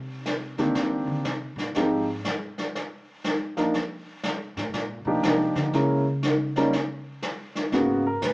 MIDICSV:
0, 0, Header, 1, 4, 480
1, 0, Start_track
1, 0, Key_signature, -3, "major"
1, 0, Tempo, 497925
1, 1692, Time_signature, 4, 2, 24, 8
1, 8034, End_track
2, 0, Start_track
2, 0, Title_t, "Grand piano"
2, 0, Program_c, 0, 0
2, 565, Note_on_c, 0, 58, 55
2, 566, Note_on_c, 0, 51, 58
2, 570, Note_on_c, 0, 62, 53
2, 570, Note_on_c, 0, 67, 64
2, 573, Note_on_c, 0, 60, 55
2, 1178, Note_off_c, 0, 51, 0
2, 1178, Note_off_c, 0, 58, 0
2, 1180, Note_off_c, 0, 62, 0
2, 1180, Note_off_c, 0, 67, 0
2, 1182, Note_off_c, 0, 60, 0
2, 1692, Note_on_c, 0, 53, 49
2, 1698, Note_on_c, 0, 56, 48
2, 1698, Note_on_c, 0, 67, 54
2, 1703, Note_on_c, 0, 60, 44
2, 1705, Note_on_c, 0, 63, 49
2, 1976, Note_off_c, 0, 53, 0
2, 1979, Note_off_c, 0, 56, 0
2, 1979, Note_off_c, 0, 67, 0
2, 1982, Note_off_c, 0, 60, 0
2, 1983, Note_off_c, 0, 63, 0
2, 3439, Note_on_c, 0, 53, 54
2, 3447, Note_on_c, 0, 63, 54
2, 3448, Note_on_c, 0, 58, 56
2, 3452, Note_on_c, 0, 62, 53
2, 3452, Note_on_c, 0, 70, 60
2, 3591, Note_off_c, 0, 53, 0
2, 3596, Note_off_c, 0, 58, 0
2, 3596, Note_off_c, 0, 63, 0
2, 3598, Note_off_c, 0, 62, 0
2, 3598, Note_off_c, 0, 70, 0
2, 4885, Note_on_c, 0, 58, 54
2, 4888, Note_on_c, 0, 62, 56
2, 4888, Note_on_c, 0, 63, 57
2, 4890, Note_on_c, 0, 53, 67
2, 4893, Note_on_c, 0, 67, 73
2, 5498, Note_off_c, 0, 58, 0
2, 5500, Note_off_c, 0, 62, 0
2, 5500, Note_off_c, 0, 63, 0
2, 5501, Note_off_c, 0, 53, 0
2, 5502, Note_off_c, 0, 67, 0
2, 5531, Note_on_c, 0, 56, 57
2, 5537, Note_on_c, 0, 58, 55
2, 5538, Note_on_c, 0, 64, 53
2, 5540, Note_on_c, 0, 61, 58
2, 5545, Note_on_c, 0, 70, 68
2, 5816, Note_off_c, 0, 56, 0
2, 5819, Note_off_c, 0, 58, 0
2, 5820, Note_off_c, 0, 64, 0
2, 5821, Note_off_c, 0, 61, 0
2, 5823, Note_off_c, 0, 70, 0
2, 6332, Note_on_c, 0, 58, 62
2, 6337, Note_on_c, 0, 55, 67
2, 6337, Note_on_c, 0, 61, 64
2, 6338, Note_on_c, 0, 70, 73
2, 6340, Note_on_c, 0, 63, 62
2, 6478, Note_off_c, 0, 58, 0
2, 6480, Note_off_c, 0, 55, 0
2, 6480, Note_off_c, 0, 61, 0
2, 6481, Note_off_c, 0, 70, 0
2, 6482, Note_off_c, 0, 63, 0
2, 7454, Note_on_c, 0, 58, 60
2, 7456, Note_on_c, 0, 49, 66
2, 7456, Note_on_c, 0, 66, 67
2, 7458, Note_on_c, 0, 59, 58
2, 7737, Note_off_c, 0, 58, 0
2, 7738, Note_off_c, 0, 49, 0
2, 7739, Note_off_c, 0, 59, 0
2, 7739, Note_off_c, 0, 66, 0
2, 7777, Note_on_c, 0, 70, 74
2, 7932, Note_off_c, 0, 70, 0
2, 7954, Note_on_c, 0, 71, 71
2, 8034, Note_off_c, 0, 71, 0
2, 8034, End_track
3, 0, Start_track
3, 0, Title_t, "Upright bass"
3, 0, Program_c, 1, 32
3, 0, Note_on_c, 1, 48, 73
3, 525, Note_off_c, 1, 48, 0
3, 553, Note_on_c, 1, 50, 76
3, 719, Note_off_c, 1, 50, 0
3, 724, Note_on_c, 1, 51, 85
3, 1027, Note_off_c, 1, 51, 0
3, 1033, Note_on_c, 1, 50, 86
3, 1194, Note_off_c, 1, 50, 0
3, 1200, Note_on_c, 1, 48, 67
3, 1495, Note_off_c, 1, 48, 0
3, 1501, Note_on_c, 1, 46, 87
3, 1673, Note_off_c, 1, 46, 0
3, 1691, Note_on_c, 1, 44, 70
3, 2138, Note_off_c, 1, 44, 0
3, 4404, Note_on_c, 1, 45, 88
3, 4556, Note_off_c, 1, 45, 0
3, 4562, Note_on_c, 1, 46, 86
3, 4861, Note_off_c, 1, 46, 0
3, 4866, Note_on_c, 1, 47, 87
3, 5033, Note_off_c, 1, 47, 0
3, 5039, Note_on_c, 1, 48, 83
3, 5348, Note_off_c, 1, 48, 0
3, 5354, Note_on_c, 1, 50, 105
3, 5514, Note_off_c, 1, 50, 0
3, 5520, Note_on_c, 1, 49, 78
3, 6927, Note_off_c, 1, 49, 0
3, 7438, Note_on_c, 1, 44, 82
3, 7910, Note_off_c, 1, 44, 0
3, 7922, Note_on_c, 1, 45, 90
3, 8034, Note_off_c, 1, 45, 0
3, 8034, End_track
4, 0, Start_track
4, 0, Title_t, "Drums"
4, 247, Note_on_c, 9, 38, 59
4, 343, Note_off_c, 9, 38, 0
4, 559, Note_on_c, 9, 38, 36
4, 656, Note_off_c, 9, 38, 0
4, 723, Note_on_c, 9, 25, 53
4, 723, Note_on_c, 9, 38, 52
4, 819, Note_off_c, 9, 38, 0
4, 1202, Note_on_c, 9, 38, 60
4, 1299, Note_off_c, 9, 38, 0
4, 1525, Note_on_c, 9, 38, 38
4, 1621, Note_off_c, 9, 38, 0
4, 1682, Note_off_c, 9, 25, 0
4, 1682, Note_on_c, 9, 25, 52
4, 1682, Note_on_c, 9, 38, 42
4, 1779, Note_off_c, 9, 38, 0
4, 2166, Note_on_c, 9, 38, 60
4, 2263, Note_off_c, 9, 38, 0
4, 2486, Note_on_c, 9, 38, 39
4, 2583, Note_off_c, 9, 38, 0
4, 2655, Note_off_c, 9, 25, 0
4, 2655, Note_on_c, 9, 25, 50
4, 2655, Note_on_c, 9, 38, 53
4, 2751, Note_off_c, 9, 38, 0
4, 3127, Note_on_c, 9, 38, 62
4, 3224, Note_off_c, 9, 38, 0
4, 3441, Note_on_c, 9, 38, 41
4, 3537, Note_off_c, 9, 38, 0
4, 3603, Note_off_c, 9, 25, 0
4, 3603, Note_on_c, 9, 25, 53
4, 3603, Note_on_c, 9, 38, 41
4, 3700, Note_off_c, 9, 38, 0
4, 4082, Note_on_c, 9, 38, 64
4, 4179, Note_off_c, 9, 38, 0
4, 4405, Note_on_c, 9, 38, 41
4, 4502, Note_off_c, 9, 38, 0
4, 4566, Note_off_c, 9, 25, 0
4, 4566, Note_on_c, 9, 25, 49
4, 4566, Note_on_c, 9, 38, 50
4, 4662, Note_off_c, 9, 38, 0
4, 5044, Note_on_c, 9, 38, 66
4, 5141, Note_off_c, 9, 38, 0
4, 5358, Note_on_c, 9, 38, 41
4, 5455, Note_off_c, 9, 38, 0
4, 5527, Note_off_c, 9, 25, 0
4, 5527, Note_on_c, 9, 25, 44
4, 5527, Note_on_c, 9, 38, 43
4, 5624, Note_off_c, 9, 38, 0
4, 6004, Note_on_c, 9, 38, 60
4, 6100, Note_off_c, 9, 38, 0
4, 6322, Note_on_c, 9, 38, 41
4, 6418, Note_off_c, 9, 38, 0
4, 6488, Note_off_c, 9, 25, 0
4, 6488, Note_on_c, 9, 25, 60
4, 6488, Note_on_c, 9, 38, 53
4, 6584, Note_off_c, 9, 38, 0
4, 6964, Note_on_c, 9, 38, 70
4, 7060, Note_off_c, 9, 38, 0
4, 7283, Note_on_c, 9, 38, 38
4, 7379, Note_off_c, 9, 38, 0
4, 7442, Note_off_c, 9, 25, 0
4, 7442, Note_on_c, 9, 25, 44
4, 7442, Note_on_c, 9, 38, 39
4, 7445, Note_on_c, 9, 36, 25
4, 7538, Note_off_c, 9, 38, 0
4, 7541, Note_off_c, 9, 36, 0
4, 7922, Note_on_c, 9, 44, 54
4, 7925, Note_on_c, 9, 36, 19
4, 7925, Note_on_c, 9, 38, 60
4, 8018, Note_off_c, 9, 44, 0
4, 8021, Note_off_c, 9, 36, 0
4, 8021, Note_off_c, 9, 38, 0
4, 8034, Note_off_c, 9, 25, 0
4, 8034, End_track
0, 0, End_of_file